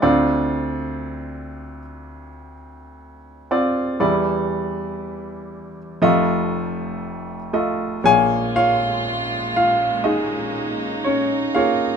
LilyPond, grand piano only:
<<
  \new Staff \with { instrumentName = "Grand piano" } { \time 4/4 \key f \lydian \tempo 4 = 60 << { r1 | r1 | \key bes \minor <f'' aes''>8 <f' des'' f''>4 <f' f''>8 <ees' aes' ees''>4 <des' des''>8 <f' f''>8 | } \\ { <c' f' d''>2 r4. <c' f' d''>8 | <g e' d''>2 <a f' ees''>4. <a f' ees''>8 | <bes aes' des''>2 r4. <bes aes' des''>8 | } >> }
  \new Staff \with { instrumentName = "Grand piano" } { \clef bass \time 4/4 \key f \lydian <d, d>1 | <e, e>2 <f,, f,>2 | \key bes \minor <bes,, bes,>1 | }
>>